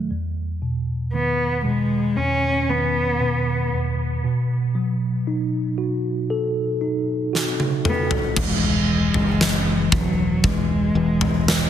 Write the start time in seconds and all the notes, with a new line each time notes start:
Already playing: D#3 F#3 A3
0.11 E2
0.62 B2
1.13 D#3 B3
1.65 B2 G#3
2.17 E2 C#4
2.69 D#3 B3
3.20 B2
3.72 E2
4.24 B2
4.75 F#3
5.27 D#4
5.78 F#4
6.30 A4
6.81 D#4
7.33 F#4, snare
7.60 high tom
7.85 B3 A4, mid tom
8.11 floor tom
8.36 E1 E3, kick, floor tom, crash
8.41 G#3
8.89 E3
9.14 F#1, floor tom
9.41 E3, snare
9.92 E1 E3 F#3, kick, floor tom
10.44 E3 G#3, kick, floor tom
10.95 E1 E3
11.21 floor tom
11.48 E3, snare